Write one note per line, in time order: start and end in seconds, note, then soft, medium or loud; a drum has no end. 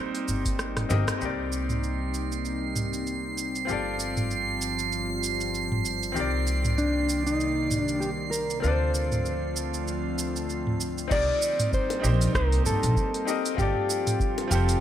0.00 1.18 G3 medium
0.00 1.18 A#3 medium
0.00 0.89 C4 medium
0.00 1.18 C4 medium
0.00 0.89 D#4 medium
0.00 1.18 D#4 medium
0.00 0.91 G4 medium
0.00 0.92 A#4 medium
0.00 0.90 C5 medium
0.00 1.23 D5 medium
0.15 open hi-hat soft
0.28 0.84 G1 medium
0.28 cabasa medium
0.46 kick loud
0.46 open hi-hat medium
0.46 cabasa soft
0.59 cross-stick medium
0.59 cabasa soft
0.77 cross-stick medium
0.77 mid tom medium
0.77 open hi-hat soft
0.89 1.03 G1 loud
0.89 1.17 C4 medium
0.89 1.18 D#4 medium
0.89 1.18 G4 medium
0.89 1.19 A#4 medium
0.89 1.19 D#5 medium
0.89 high bongo medium
0.89 cabasa medium
1.08 cross-stick medium
1.08 open hi-hat medium
1.08 cabasa soft
1.18 3.66 C2 medium
1.18 3.66 G3 medium
1.18 3.66 A#3 medium
1.18 3.64 C4 medium
1.18 6.12 C4 medium
1.18 3.65 D#4 medium
1.18 3.66 D#4 medium
1.18 3.66 G4 medium
1.18 11.12 C7 medium
1.18 cabasa soft
1.24 3.67 A#4 medium
1.24 3.68 D5 medium
1.52 cabasa medium
1.70 mid tom medium
1.70 cabasa soft
1.83 cabasa soft
2.14 cabasa medium
2.32 cabasa soft
2.45 cabasa soft
2.76 mid tom medium
2.76 cabasa medium
2.93 cabasa soft
3.07 cabasa soft
3.38 cabasa medium
3.55 cabasa soft
3.65 6.14 G1 medium
3.65 6.14 F3 medium
3.65 6.11 C4 medium
3.65 6.12 F4 medium
3.65 6.14 F4 medium
3.65 6.13 G4 medium
3.65 cabasa soft
3.69 8.60 G3 medium
3.69 6.14 A4 medium
3.69 6.15 D5 medium
4.00 cabasa medium
4.17 mid tom medium
4.17 cabasa soft
4.31 cabasa soft
4.61 cabasa medium
4.79 cabasa soft
4.92 cabasa soft
5.23 cabasa medium
5.41 cabasa soft
5.54 cabasa soft
5.72 mid tom medium
5.85 cabasa medium
6.03 cabasa soft
6.12 8.61 C2 medium
6.12 8.60 D#3 medium
6.12 8.59 C4 medium
6.12 8.60 G4 medium
6.12 8.61 D5 medium
6.16 8.61 C3 medium
6.16 8.61 D#3 medium
6.16 8.62 A#3 medium
6.16 8.61 A#4 medium
6.16 8.62 D5 medium
6.16 cabasa soft
6.47 cabasa medium
6.65 mid tom medium
6.65 cabasa soft
6.78 7.26 D4 medium
6.78 cabasa soft
7.09 cabasa medium
7.27 7.81 D#4 medium
7.27 cabasa soft
7.40 cabasa soft
7.71 mid tom medium
7.71 cabasa medium
7.81 8.04 D4 medium
7.88 cabasa soft
8.00 8.09 G4 medium
8.00 cabasa soft
8.31 8.62 A#4 medium
8.31 cabasa medium
8.50 cabasa soft
8.60 11.09 D2 medium
8.60 11.09 A3 medium
8.60 11.06 C4 medium
8.60 11.07 D4 medium
8.60 11.08 F4 medium
8.60 10.45 C5 loud
8.60 cabasa soft
8.64 11.09 D3 medium
8.64 11.09 F3 medium
8.64 11.09 C4 medium
8.64 11.09 F4 medium
8.64 11.09 A4 medium
8.64 11.10 D5 medium
8.95 cabasa medium
9.12 mid tom medium
9.12 cabasa soft
9.26 cabasa soft
9.56 cabasa medium
9.74 cabasa soft
9.88 cabasa soft
10.19 cabasa medium
10.36 cabasa soft
10.50 cabasa soft
10.67 mid tom medium
10.81 cabasa medium
10.98 cabasa soft
11.08 11.23 C2 medium
11.08 13.56 G3 medium
11.08 13.56 A#3 medium
11.08 11.98 C4 medium
11.08 14.80 C4 medium
11.08 12.00 D#4 medium
11.08 13.56 D#4 medium
11.08 12.01 G4 medium
11.08 kick loud
11.08 crash loud
11.08 cabasa soft
11.12 12.02 A#4 medium
11.12 11.74 D5 loud
11.12 12.03 D5 medium
11.42 cabasa medium
11.60 mid tom medium
11.60 open hi-hat medium
11.60 cabasa soft
11.73 12.35 C5 loud
11.73 kick loud
11.73 cabasa soft
11.90 open hi-hat soft
11.90 high bongo medium
12.00 13.23 C4 medium
12.00 13.24 D#4 medium
12.00 13.25 G4 medium
12.04 12.27 A#1 loud
12.04 13.26 A#3 medium
12.04 13.27 C5 medium
12.04 cabasa medium
12.21 open hi-hat medium
12.21 cabasa soft
12.35 12.58 C2 medium
12.35 12.66 A#4 loud
12.35 kick loud
12.35 cross-stick medium
12.35 cabasa soft
12.52 open hi-hat soft
12.66 12.78 G1 medium
12.66 13.55 A4 medium
12.66 mid tom medium
12.66 cabasa medium
12.83 12.93 A#1 loud
12.83 open hi-hat medium
12.83 cabasa soft
12.96 kick loud
12.96 cabasa soft
13.14 open hi-hat soft
13.25 13.53 C4 medium
13.25 13.55 D#4 medium
13.25 13.55 G4 medium
13.25 13.56 A#4 medium
13.25 13.56 D#5 medium
13.25 cabasa medium
13.46 open hi-hat medium
13.46 cabasa soft
13.55 13.71 G1 loud
13.55 14.80 F3 medium
13.55 14.80 G3 medium
13.55 14.46 C4 medium
13.55 14.47 F4 medium
13.55 14.80 F4 medium
13.55 14.48 G4 medium
13.55 kick loud
13.59 14.51 G4 medium
13.59 14.49 A4 medium
13.59 14.50 D5 medium
13.59 cabasa soft
13.90 cabasa medium
14.07 mid tom medium
14.07 open hi-hat medium
14.07 cabasa soft
14.20 kick loud
14.20 cabasa soft
14.38 open hi-hat soft
14.38 high bongo medium
14.48 14.74 F1 loud
14.48 14.80 C4 medium
14.48 14.80 F4 medium
14.48 14.80 G4 medium
14.48 cabasa medium
14.52 14.80 G4 medium
14.52 14.80 A4 medium
14.52 14.80 C5 medium
14.69 open hi-hat medium
14.69 cabasa soft